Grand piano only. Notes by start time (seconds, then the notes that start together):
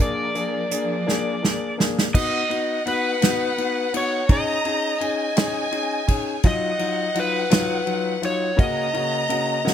0.00 A#3 D4 G#4
0.35 A#3 D4 G#4
0.71 A#3 D4 G#4
1.07 A#3 D4 G#4
1.42 A#3 D4 G#4
1.78 A#3 D4 G#4
2.14 B3 D#4 F#4
2.49 B3 D#4 F#4
2.86 B3 D#4 F#4
3.22 B3 D#4 F#4
3.57 B3 D#4 F#4
3.93 B3 D#4 F#4
4.29 C#4 D#4 G#4
4.65 C#4 D#4 G#4
5.01 C#4 D#4 G#4
5.37 C#4 D#4 G#4
5.72 C#4 D#4 G#4
6.07 C#4 D#4 G#4
6.44 F#3 D#4 F4
6.78 F#3 D#4 F4
7.14 F#3 D#4 F4
7.50 F#3 D#4 F4
7.86 F#3 D#4 F4
8.22 F#3 D#4 F4
8.57 C#3 A#3 C#4 F#4
8.94 C#3 A#3 C#4 F#4
9.29 C#3 A#3 C#4 F#4
9.65 C#3 A#3 C#4 F#4